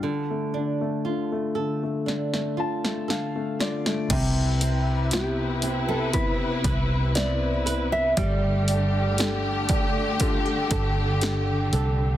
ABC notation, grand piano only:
X:1
M:4/4
L:1/16
Q:1/4=59
K:C
V:1 name="Grand piano"
z8 z2 a2 f2 d2 | z16 | z16 |]
V:2 name="Grand piano"
D, A, D, A, D, A, D, A, D, A, D, A, D, A, D, A, | C,4 [B,CE]4 [B,CE]4 [B,CE]4 | G,4 [DGA]4 [DGA]4 [DGA]4 |]